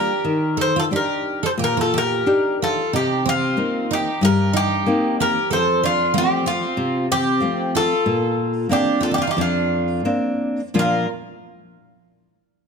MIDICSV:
0, 0, Header, 1, 4, 480
1, 0, Start_track
1, 0, Key_signature, -2, "major"
1, 0, Tempo, 671141
1, 166, Time_signature, 4, 2, 24, 8
1, 2084, Tempo, 643087
1, 6404, Tempo, 681044
1, 7844, Tempo, 648649
1, 9272, End_track
2, 0, Start_track
2, 0, Title_t, "Bouzouki"
2, 0, Program_c, 0, 25
2, 0, Note_on_c, 0, 70, 78
2, 403, Note_off_c, 0, 70, 0
2, 439, Note_on_c, 0, 72, 100
2, 547, Note_off_c, 0, 72, 0
2, 569, Note_on_c, 0, 69, 80
2, 605, Note_off_c, 0, 69, 0
2, 686, Note_on_c, 0, 70, 76
2, 1036, Note_off_c, 0, 70, 0
2, 1043, Note_on_c, 0, 72, 76
2, 1079, Note_off_c, 0, 72, 0
2, 1172, Note_on_c, 0, 70, 96
2, 1264, Note_off_c, 0, 70, 0
2, 1295, Note_on_c, 0, 69, 73
2, 1396, Note_off_c, 0, 69, 0
2, 1415, Note_on_c, 0, 70, 99
2, 1842, Note_off_c, 0, 70, 0
2, 1885, Note_on_c, 0, 69, 85
2, 2087, Note_off_c, 0, 69, 0
2, 2117, Note_on_c, 0, 67, 86
2, 2351, Note_off_c, 0, 67, 0
2, 2365, Note_on_c, 0, 65, 99
2, 2842, Note_off_c, 0, 65, 0
2, 2845, Note_on_c, 0, 67, 81
2, 3049, Note_off_c, 0, 67, 0
2, 3079, Note_on_c, 0, 70, 93
2, 3308, Note_off_c, 0, 70, 0
2, 3317, Note_on_c, 0, 67, 93
2, 3757, Note_off_c, 0, 67, 0
2, 3802, Note_on_c, 0, 70, 90
2, 4008, Note_off_c, 0, 70, 0
2, 4036, Note_on_c, 0, 72, 91
2, 4265, Note_off_c, 0, 72, 0
2, 4280, Note_on_c, 0, 65, 97
2, 4485, Note_off_c, 0, 65, 0
2, 4521, Note_on_c, 0, 67, 90
2, 4739, Note_off_c, 0, 67, 0
2, 4742, Note_on_c, 0, 65, 95
2, 5179, Note_off_c, 0, 65, 0
2, 5221, Note_on_c, 0, 67, 101
2, 5702, Note_off_c, 0, 67, 0
2, 5705, Note_on_c, 0, 69, 92
2, 6384, Note_off_c, 0, 69, 0
2, 6422, Note_on_c, 0, 67, 81
2, 6628, Note_off_c, 0, 67, 0
2, 6636, Note_on_c, 0, 69, 73
2, 6688, Note_off_c, 0, 69, 0
2, 6714, Note_on_c, 0, 67, 75
2, 6759, Note_off_c, 0, 67, 0
2, 6767, Note_on_c, 0, 65, 71
2, 6819, Note_off_c, 0, 65, 0
2, 6831, Note_on_c, 0, 67, 67
2, 6884, Note_off_c, 0, 67, 0
2, 6904, Note_on_c, 0, 65, 71
2, 7347, Note_off_c, 0, 65, 0
2, 7878, Note_on_c, 0, 70, 80
2, 8091, Note_off_c, 0, 70, 0
2, 9272, End_track
3, 0, Start_track
3, 0, Title_t, "Twelve-string acoustic guitar"
3, 0, Program_c, 1, 25
3, 0, Note_on_c, 1, 67, 69
3, 387, Note_off_c, 1, 67, 0
3, 409, Note_on_c, 1, 69, 69
3, 520, Note_off_c, 1, 69, 0
3, 545, Note_on_c, 1, 65, 70
3, 581, Note_off_c, 1, 65, 0
3, 664, Note_on_c, 1, 67, 71
3, 990, Note_off_c, 1, 67, 0
3, 1023, Note_on_c, 1, 69, 73
3, 1058, Note_off_c, 1, 69, 0
3, 1139, Note_on_c, 1, 67, 69
3, 1247, Note_off_c, 1, 67, 0
3, 1267, Note_on_c, 1, 65, 71
3, 1371, Note_off_c, 1, 65, 0
3, 1385, Note_on_c, 1, 67, 74
3, 1827, Note_off_c, 1, 67, 0
3, 1877, Note_on_c, 1, 65, 66
3, 2083, Note_off_c, 1, 65, 0
3, 2099, Note_on_c, 1, 63, 63
3, 2319, Note_off_c, 1, 63, 0
3, 2340, Note_on_c, 1, 60, 74
3, 2785, Note_off_c, 1, 60, 0
3, 2826, Note_on_c, 1, 63, 67
3, 3039, Note_off_c, 1, 63, 0
3, 3064, Note_on_c, 1, 67, 72
3, 3278, Note_off_c, 1, 67, 0
3, 3294, Note_on_c, 1, 63, 72
3, 3745, Note_off_c, 1, 63, 0
3, 3793, Note_on_c, 1, 67, 72
3, 4004, Note_off_c, 1, 67, 0
3, 4019, Note_on_c, 1, 69, 76
3, 4234, Note_off_c, 1, 69, 0
3, 4264, Note_on_c, 1, 62, 77
3, 4477, Note_off_c, 1, 62, 0
3, 4490, Note_on_c, 1, 60, 74
3, 4710, Note_off_c, 1, 60, 0
3, 4733, Note_on_c, 1, 60, 75
3, 5175, Note_off_c, 1, 60, 0
3, 5221, Note_on_c, 1, 60, 76
3, 5663, Note_off_c, 1, 60, 0
3, 5694, Note_on_c, 1, 65, 65
3, 6379, Note_off_c, 1, 65, 0
3, 6413, Note_on_c, 1, 62, 77
3, 6603, Note_off_c, 1, 62, 0
3, 6618, Note_on_c, 1, 65, 67
3, 6675, Note_off_c, 1, 65, 0
3, 6694, Note_on_c, 1, 63, 52
3, 6740, Note_off_c, 1, 63, 0
3, 6742, Note_on_c, 1, 62, 55
3, 6802, Note_off_c, 1, 62, 0
3, 6807, Note_on_c, 1, 63, 58
3, 6867, Note_off_c, 1, 63, 0
3, 6882, Note_on_c, 1, 62, 61
3, 7336, Note_off_c, 1, 62, 0
3, 7844, Note_on_c, 1, 65, 62
3, 8073, Note_off_c, 1, 65, 0
3, 9272, End_track
4, 0, Start_track
4, 0, Title_t, "Nylon-string guitar"
4, 0, Program_c, 2, 24
4, 0, Note_on_c, 2, 58, 45
4, 0, Note_on_c, 2, 65, 49
4, 76, Note_off_c, 2, 58, 0
4, 77, Note_off_c, 2, 65, 0
4, 175, Note_on_c, 2, 51, 59
4, 638, Note_off_c, 2, 51, 0
4, 650, Note_on_c, 2, 62, 46
4, 654, Note_on_c, 2, 63, 40
4, 657, Note_on_c, 2, 67, 51
4, 1033, Note_off_c, 2, 62, 0
4, 1035, Note_off_c, 2, 63, 0
4, 1037, Note_off_c, 2, 67, 0
4, 1127, Note_on_c, 2, 46, 74
4, 1596, Note_off_c, 2, 46, 0
4, 1619, Note_on_c, 2, 62, 54
4, 1622, Note_on_c, 2, 63, 50
4, 1624, Note_on_c, 2, 67, 63
4, 1994, Note_off_c, 2, 67, 0
4, 1995, Note_off_c, 2, 62, 0
4, 1995, Note_off_c, 2, 63, 0
4, 2098, Note_on_c, 2, 48, 68
4, 2562, Note_off_c, 2, 48, 0
4, 2572, Note_on_c, 2, 58, 51
4, 2576, Note_on_c, 2, 60, 44
4, 2580, Note_on_c, 2, 63, 54
4, 2953, Note_off_c, 2, 58, 0
4, 2954, Note_off_c, 2, 60, 0
4, 2957, Note_off_c, 2, 63, 0
4, 3053, Note_on_c, 2, 43, 66
4, 3517, Note_off_c, 2, 43, 0
4, 3539, Note_on_c, 2, 58, 56
4, 3545, Note_on_c, 2, 60, 54
4, 3551, Note_on_c, 2, 63, 59
4, 3920, Note_off_c, 2, 58, 0
4, 3921, Note_off_c, 2, 60, 0
4, 3926, Note_off_c, 2, 63, 0
4, 4031, Note_on_c, 2, 41, 72
4, 4481, Note_off_c, 2, 41, 0
4, 4488, Note_on_c, 2, 53, 49
4, 4495, Note_on_c, 2, 57, 46
4, 4499, Note_on_c, 2, 60, 57
4, 4868, Note_off_c, 2, 53, 0
4, 4872, Note_off_c, 2, 57, 0
4, 4875, Note_off_c, 2, 60, 0
4, 4963, Note_on_c, 2, 48, 76
4, 5427, Note_off_c, 2, 48, 0
4, 5436, Note_on_c, 2, 53, 54
4, 5443, Note_on_c, 2, 60, 56
4, 5448, Note_on_c, 2, 57, 49
4, 5823, Note_off_c, 2, 53, 0
4, 5827, Note_off_c, 2, 60, 0
4, 5830, Note_off_c, 2, 57, 0
4, 5924, Note_on_c, 2, 46, 70
4, 6389, Note_off_c, 2, 46, 0
4, 6398, Note_on_c, 2, 58, 50
4, 6406, Note_on_c, 2, 60, 45
4, 6407, Note_on_c, 2, 62, 53
4, 6774, Note_off_c, 2, 58, 0
4, 6779, Note_off_c, 2, 60, 0
4, 6779, Note_off_c, 2, 62, 0
4, 6873, Note_on_c, 2, 41, 74
4, 7345, Note_off_c, 2, 41, 0
4, 7354, Note_on_c, 2, 58, 49
4, 7356, Note_on_c, 2, 60, 46
4, 7357, Note_on_c, 2, 62, 55
4, 7744, Note_off_c, 2, 58, 0
4, 7744, Note_off_c, 2, 60, 0
4, 7744, Note_off_c, 2, 62, 0
4, 7841, Note_on_c, 2, 46, 60
4, 7846, Note_on_c, 2, 53, 51
4, 7848, Note_on_c, 2, 58, 50
4, 7851, Note_on_c, 2, 62, 52
4, 7851, Note_on_c, 2, 65, 66
4, 8071, Note_off_c, 2, 46, 0
4, 8074, Note_off_c, 2, 53, 0
4, 8075, Note_off_c, 2, 58, 0
4, 8077, Note_off_c, 2, 62, 0
4, 8077, Note_off_c, 2, 65, 0
4, 9272, End_track
0, 0, End_of_file